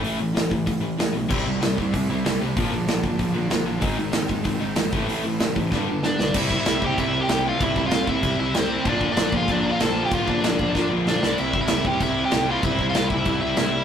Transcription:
<<
  \new Staff \with { instrumentName = "Lead electric guitar" } { \time 4/4 \key c \mixolydian \tempo 4 = 191 r1 | r1 | r1 | r1 |
r2. <d' d''>4 | \key c \major <e' e''>8. <e' e''>8. <g' g''>8 <e' e''>8. <g' g''>8. <f' f''>8 | <e' e''>8. <f' f''>8. <e' e''>4 <e' e''>8 <c' c''>4 | <d' d''>8. <d' d''>8. <f' f''>8 <d' d''>8. <f' f''>16 <a' a''>8. <g' g''>16 |
<f' f''>8 <d' d''>2 r8 <d' d''>4 | <e' e''>8. <e' e''>8. <g' g''>8 <e' e''>8. <g' g''>8. <f' f''>8 | <e' e''>8. <f' f''>8. <e' e''>4 <e' e''>8 <e' e''>4 | }
  \new Staff \with { instrumentName = "Overdriven electric guitar" } { \clef bass \time 4/4 \key c \mixolydian r1 | <c g c' e'>2~ <c g c' e'>8 <c g c' e'>8 <c g c' e'>4 | <bes, d f bes d'>2~ <bes, d f bes d'>8 <bes, d f bes d'>8 <bes, d f bes d'>4 | <aes, ees aes c' ees'>2~ <aes, ees aes c' ees'>8 <aes, ees aes c' ees'>8 <aes, ees aes c' ees'>8 <a, e a c' e'>8~ |
<a, e a c' e'>2 <g, d g b d'>2 | \key c \major <c g c' e'>1 | <c g c' e'>1 | <bes, d f bes f'>1 |
<bes, d f bes f'>2.~ <bes, d f bes f'>8 <c g c' e'>8~ | <c g c' e'>2.~ <c g c' e'>8 <c g c' e'>8~ | <c g c' e'>2.~ <c g c' e'>8 r8 | }
  \new Staff \with { instrumentName = "Distorted electric guitar" } { \clef bass \time 4/4 \key c \mixolydian <a, e a>8 <a, e>8 <a, e>8 <a, e>8 <a, e>8 <a, e>8 <a, e>8 <a, e>8 | <c g c'>8 <c g>8 <c g>8 <c g>8 <c g>8 <c g>8 <c g>8 <c g>8 | <bes, d f>8 <bes, d>8 <bes, d>8 <bes, d>8 <bes, d>8 <bes, d>8 <bes, d>8 <bes, d>8 | <aes, ees aes>8 <aes, ees>8 <aes, ees>8 <aes, ees>8 <aes, ees>8 <aes, ees>8 <aes, ees>8 <a, e a>8 |
<a, e a>8 <a, e>8 <a, e>8 <a, e>8 <g, d g>8 <g, d>8 <g, d>8 <g, d>8 | \key c \major <c g c' e'>4. <c g c' e'>2~ <c g c' e'>8 | <c g c' e'>4. <c g c' e'>2~ <c g c' e'>8 | <bes, d f bes f'>4. <bes, d f bes f'>2~ <bes, d f bes f'>8 |
<bes, d f bes f'>4. <bes, d f bes f'>2 <c g c' e'>8~ | <c g c' e'>4 <c g c' e'>2~ <c g c' e'>8 <c g c' e'>8~ | <c g c' e'>4 <c g c' e'>2~ <c g c' e'>8 r8 | }
  \new Staff \with { instrumentName = "Distorted electric guitar" } { \clef bass \time 4/4 \key c \mixolydian <a, e a>8 <a, e>8 <a, e>8 <a, e>8 <a, e>8 <a, e>8 <a, e>8 <a, e>8 | <c g c'>8 <c g>8 <c g>8 <c g>8 <c g>8 <c g>8 <c g>8 <c g>8 | <bes, f bes>8 <bes, f>8 <bes, f>8 <bes, f>8 <bes, f>8 <bes, f>8 <bes, f>8 <bes, f>8 | <aes, ees aes>8 <aes, ees>8 <aes, ees>8 <aes, ees>8 <aes, ees>8 <aes, ees>8 <aes, ees>8 <a, e a>8 |
<a, e a>8 <a, e>8 <a, e>8 <a, e>8 <g, d g>8 <g, d>8 <g, d>8 <g, d>8 | \key c \major <c g c'>1 | <c g c'>1 | <bes, f bes>1 |
<bes, f bes>2.~ <bes, f bes>8 <c g c'>8~ | <c g c'>2.~ <c g c'>8 <c g c'>8~ | <c g c'>2.~ <c g c'>8 r8 | }
  \new Staff \with { instrumentName = "Picked electric bass" } { \clef bass \time 4/4 \key c \mixolydian a,,8 a,,8 a,,8 a,,8 a,,8 a,,8 a,,8 b,,8 | c,8 c,8 c,8 c,8 c,8 c,8 c,8 c,8 | bes,,8 bes,,8 bes,,8 bes,,8 bes,,8 bes,,8 bes,,8 bes,,8 | aes,,8 aes,,8 aes,,8 aes,,8 aes,,8 aes,,8 bes,,8 a,,8 |
a,,8 a,,8 a,,8 a,,8 g,,8 g,,8 g,,8 b,,8 | \key c \major c,4 c,8 c,8 c,4 c,4 | c,8 c,8 c,8 c,8 c,8 c,8 c,4 | bes,,4 bes,,8 bes,,8 bes,,4 bes,,4 |
bes,,8 bes,,8 bes,,8 bes,,8 bes,,8 bes,,8 bes,,8 c,8 | c,4 c,8 c,8 c,4 c,4 | c,8 c,8 c,8 c,8 c,8 c,8 c,4 | }
  \new DrumStaff \with { instrumentName = "Drums" } \drummode { \time 4/4 hho4 <hho sn>8 bd8 <hho bd>4 <hho sn>4 | <cymc bd>4 <hho sn>8 bd8 <hho bd>4 <hho sn>4 | <hho bd>4 <hho sn>8 bd8 <hho bd>4 <hho sn>4 | <hho bd>4 <hho sn>8 bd8 <hho bd>4 <hho sn>8 bd8 |
hho4 <hho sn>8 bd8 <bd sn>4 sn8 sn8 | <cymc bd>8 bd8 <cymc sn>8 bd8 <cymc bd>4 <cymc sn>4 | <cymc bd>8 bd8 <cymc sn>8 bd8 <cymc bd>4 <cymc sn>4 | <cymc bd>8 bd8 <cymc sn>8 bd8 <cymc bd>4 <cymc sn>4 |
<cymc bd>8 bd8 <cymc sn>8 bd8 <bd sn>4 sn8 sn8 | cymc8 bd8 <cymc sn>8 bd8 <cymc bd>4 <cymc sn>4 | <cymc bd>8 bd8 <cymc sn>8 bd8 <cymc bd>4 <cymc sn>4 | }
>>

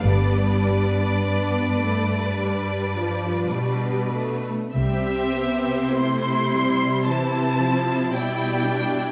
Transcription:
<<
  \new Staff \with { instrumentName = "Violin section" } { \time 4/4 \key c \major \tempo 4 = 52 d''2.~ d''8 r8 | e''4 c'''4 a''4 g''4 | }
  \new Staff \with { instrumentName = "Violin section" } { \time 4/4 \key c \major << { b'1 | c''2 c''4 d''4 | } \\ { d'1 | g'4 e'4 e'4 e'4 | } >> }
  \new Staff \with { instrumentName = "Viola section" } { \time 4/4 \key c \major << { b4 b8 a8 g8 f8 g8 a8 | c'4 c'2 e'8 d'8 | } \\ { g4 r2. | g8 b8 a8 g8 e8 f8 g4 | } >> }
  \new Staff \with { instrumentName = "Cello section" } { \clef bass \time 4/4 \key c \major g,2. b,4 | c2. b,4 | }
  \new Staff \with { instrumentName = "Double bass section" } { \clef bass \time 4/4 \key c \major g,,4 r2. | c,4 r2. | }
>>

